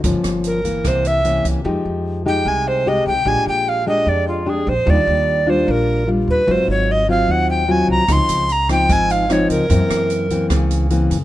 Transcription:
<<
  \new Staff \with { instrumentName = "Recorder" } { \time 4/4 \key f \minor \tempo 4 = 149 r4 bes'4 c''8 e''4 r8 | r4. g''8 aes''8 c''8 ees''8 g''8 | aes''8 g''8 f''8 ees''8 d''8 f'8 aes'8 c''8 | d''4. c''8 bes'4 r8 b'8 |
c''8 des''8 ees''8 f''8 ges''8 g''8 aes''8 bes''8 | c'''4 bes''8 g''8 aes''8 f''8 des''8 bes'8~ | bes'2 r2 | }
  \new Staff \with { instrumentName = "Nylon-string guitar" } { \time 4/4 \key f \minor << { <f bes des'>4. <e bes>4. <e bes des'>4 | <aes ees' g'>4. <aes ees' g'>4. <aes ees' g'>8 r8 | <aes d' g'>4. <aes d' g'>4. <aes d' g'>8 r8 | <g d' f'>4. <g d' f'>4. <g d' f'>4 |
<ges c' f'>4. <ges c' f'>4. <ges c' f'>4 | <f c' ees'>4 r8 <f c' ees'>4. <f c' ees'>4 | <fes bes c'>4. <fes bes c'>4. <fes bes c'>8 r8 | } \\ { g,2 c2 | f2 c2 | bes,2 f,2 | ees2 bes,2 |
aes,2 ees2 | des2 aes,2 | ges,2 des2 | } >> }
  \new Staff \with { instrumentName = "Upright bass" } { \clef bass \time 4/4 \key f \minor g,,16 r16 g,,4. c,4. c,16 r16 | f,16 r16 f,4. c,4. c,16 r16 | bes,,16 r16 bes,,4. f,4. bes,,16 r16 | ees,16 r16 ees,4. bes,,4. ees,16 r16 |
aes,,16 r16 aes,,4. ees,4. c,16 r16 | des,16 r16 des,4. aes,,4. des,16 r16 | ges,16 r16 ges,4. des,4. ges,16 r16 | }
  \new DrumStaff \with { instrumentName = "Drums" } \drummode { \time 4/4 <hh bd>8 <hh ss>8 hh8 <hh bd>8 <hh bd ss>8 hh8 hh8 <hh bd>8 | r4 r4 r4 r4 | r4 r4 r4 r4 | r4 r4 r4 r4 |
r4 r4 r4 r4 | <hh bd ss>8 hh8 hh8 <hh bd ss>8 <hh bd>8 hh8 <hh ss>8 <hh bd>8 | <hh bd>8 <hh ss>8 hh8 <hh bd>8 <hh bd ss>8 hh8 hh8 <hh bd>8 | }
>>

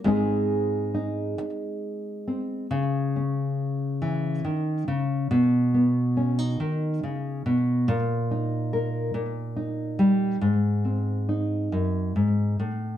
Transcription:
\new Staff \with { instrumentName = "Nylon-string guitar" } { \clef bass \time 6/8 \key gis \phrygian \tempo 4. = 46 << { <gis bis dis' gis'>4 dis'4. bis8 | r8 cis'2~ cis'8 | r8 b8 cis'16 dis'4.~ dis'16 | r8 dis'8 ais'4 dis'4 |
r8 bis8 dis'2 | } \\ { gis,4. r4. | cis4. e8 dis8 cis8 | b,4. dis8 cis8 b,8 | ais,4. ais,4 g8 |
gis,4. fis,8 gis,8 a,8 | } >> }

